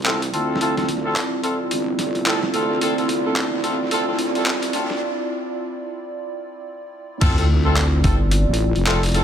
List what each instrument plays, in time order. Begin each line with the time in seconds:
Already playing: wobble bass C2, analog synth pad C4 E4 F4 D5, riser
0.02 clap, closed hi-hat
0.06 horn section C4 E4 F4 A4, closed hi-hat
0.22 closed hi-hat
0.33 wobble bass D2, horn section C4 E4 F4 A4, closed hi-hat
0.56 snare
0.61 horn section C4 E4 F4 A4, closed hi-hat
0.77 horn section C4 E4 F4 A4, snare, closed hi-hat
0.83 snare
0.89 snare, closed hi-hat
0.97 snare
1.05 horn section C4 E4 F4 A4
1.16 clap, closed hi-hat
1.43 horn section C4 E4 F4 A4, closed hi-hat
1.71 wobble bass G1, closed hi-hat
1.99 snare, closed hi-hat
2.15 closed hi-hat
2.26 horn section C4 E4 F4 A4, clap, closed hi-hat
2.43 snare
2.54 wobble bass D2, horn section C4 E4 F4 A4, closed hi-hat
2.81 wobble bass D2, horn section C4 E4 F4 A4, closed hi-hat
2.98 horn section C4 E4 F4 A4, closed hi-hat
3.09 closed hi-hat
3.26 horn section C4 E4 F4 A4
3.36 wobble bass D2, clap, closed hi-hat
3.53 wobble bass D2
3.64 horn section C4 E4 F4 A4, closed hi-hat
3.80 wobble bass D2
3.91 wobble bass D2, horn section C4 E4 F4 A4, closed hi-hat
4.08 horn section C4 E4 F4 A4
4.19 closed hi-hat
4.35 wobble bass C2, horn section C4 E4 F4 A4, closed hi-hat
4.46 clap, closed hi-hat
4.63 closed hi-hat
4.73 wobble bass D2, horn section C4 E4 F4 A4, closed hi-hat
4.90 snare
7.21 wobble bass D2, analog synth pad C4 E4 F4 D5, horn section C4 E4 F4 A4, kick, closed hi-hat, crash, sub drop
7.38 horn section C4 E4 F4 A4, closed hi-hat
7.65 horn section C4 E4 F4 A4
7.77 clap, closed hi-hat
8.04 analog synth bass G1, horn section C4 E4 F4 A4, kick, closed hi-hat
8.31 closed hi-hat
8.48 wobble bass A1
8.54 closed hi-hat
8.76 wobble bass F1, closed hi-hat
8.87 horn section C4 E4 F4 A4, clap, closed hi-hat
9.03 closed hi-hat
9.06 closed hi-hat
9.09 closed hi-hat
9.12 horn section C4 E4 F4 A4, closed hi-hat
9.14 closed hi-hat